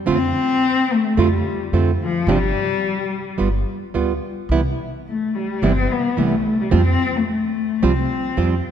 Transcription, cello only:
0.13 0.94 C4 loud
0.93 1.21 A3 medium
1.20 1.74 G3 medium
2.03 2.31 F3 medium
2.30 3.40 G3 loud
5.08 5.37 A3 medium
5.35 5.64 G3 medium
5.62 5.93 C4 medium
5.92 6.19 B3 medium
6.18 6.62 A3 medium
6.61 6.76 G3 medium
6.75 7.18 C4 medium
7.17 7.29 A3 medium
7.30 7.86 A3 medium
7.84 8.65 C4 medium

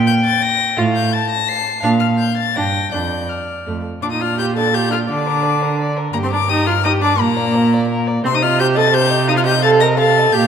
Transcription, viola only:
0.77 0.93 F4 medium
1.83 1.99 D4 medium
2.56 2.72 D4 medium
2.93 3.10 D4 medium
3.66 3.83 A3 medium
4.02 4.10 D4 medium
4.11 4.22 D#4 medium
4.21 4.38 F4 medium
4.39 4.56 G4 loud
4.57 4.75 A4 medium
4.74 4.91 G4 loud
4.92 4.99 F4 medium
5.09 5.95 D4 medium
6.14 6.17 A#3 medium
6.24 6.27 C4 medium
6.33 6.40 D4 medium
6.51 6.66 D#4 loud
6.67 6.74 F4 medium
6.84 6.91 D#4 loud
7.02 7.18 D4 loud
7.19 8.05 A#3 loud
8.24 8.28 C4 loud
8.33 8.44 D#4 loud
8.43 8.61 F4 loud
8.60 8.78 G4 loud
8.77 8.96 A4 loud
8.94 9.30 G4 loud
9.28 9.38 D#4 loud
9.37 9.45 F4 loud
9.46 9.53 G4 loud
9.62 9.83 A4 loud
9.82 9.98 A#4 loud
9.98 10.35 A4 loud
10.34 10.47 G4 loud

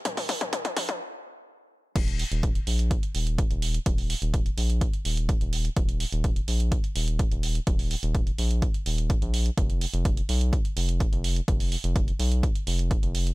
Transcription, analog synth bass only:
0.05 0.33 D#1 loud
0.41 0.69 D#1 medium
0.77 1.00 A#1 medium
1.96 2.24 D#1 loud
2.32 2.60 D#1 medium
2.67 2.95 A#1 medium
3.15 3.43 D#1 medium
3.51 3.79 D#1 loud
3.86 4.14 D#1 loud
4.22 4.50 D#1 medium
4.58 4.86 A#1 medium
5.05 5.33 D#1 medium
5.41 5.69 D#1 medium
5.77 6.05 D#1 loud
6.12 6.41 D#1 medium
6.48 6.76 A#1 medium
6.96 7.24 D#1 medium
7.32 7.60 D#1 medium
7.67 7.95 D#1 loud
8.03 8.31 D#1 medium
8.39 8.67 A#1 medium
8.86 9.14 D#1 medium
9.22 9.50 A#1 medium
9.57 9.86 F1 loud
9.94 10.22 F1 medium
10.29 10.57 B1 medium
10.77 11.05 F1 medium
11.13 11.41 F1 loud
11.48 11.76 F1 loud
11.84 12.12 F1 medium
12.19 12.48 B1 medium
12.67 12.95 F1 medium
13.03 13.31 F1 medium

